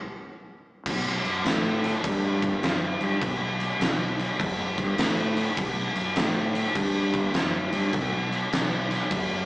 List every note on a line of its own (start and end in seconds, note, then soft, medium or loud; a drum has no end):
0.86 1.17 B1 medium
0.86 kick loud
0.86 crash loud
0.86 crash medium
1.24 1.41 F#2 medium
1.24 crash medium
1.44 1.93 A2 loud
1.44 snare loud
1.44 crash medium
1.84 snare soft
1.84 crash medium
2.04 2.53 G2 loud
2.04 kick loud
2.04 crash medium
2.42 kick loud
2.42 crash medium
2.63 2.94 F#2 loud
2.63 snare loud
2.63 crash medium
3.00 3.17 G2 medium
3.00 crash medium
3.22 3.70 B1 loud
3.22 kick loud
3.22 crash medium
3.60 crash medium
3.79 4.28 B1 medium
3.79 snare loud
3.79 crash medium
4.19 crash medium
4.40 4.71 F#2 loud
4.40 kick loud
4.40 crash medium
4.78 4.95 G2 medium
4.78 kick loud
4.78 crash medium
4.98 5.47 A2 loud
4.98 snare loud
4.98 crash medium
5.37 crash medium
5.57 5.89 B1 loud
5.57 kick loud
5.57 crash medium
5.95 6.13 F#2 medium
5.95 crash medium
6.16 6.65 A2 medium
6.16 snare loud
6.16 crash medium
6.55 crash medium
6.75 7.24 G2 loud
6.75 kick loud
6.75 crash loud
7.14 kick loud
7.14 crash medium
7.34 7.66 F#2 medium
7.34 snare loud
7.34 crash medium
7.72 7.89 G2 loud
7.72 crash medium
7.93 8.41 B1 loud
7.93 kick loud
7.93 crash medium
8.32 crash medium
8.52 9.00 B1 medium
8.52 snare loud
8.52 crash medium
8.91 snare soft
8.91 crash medium
9.11 9.42 F#2 loud
9.11 kick loud
9.11 crash medium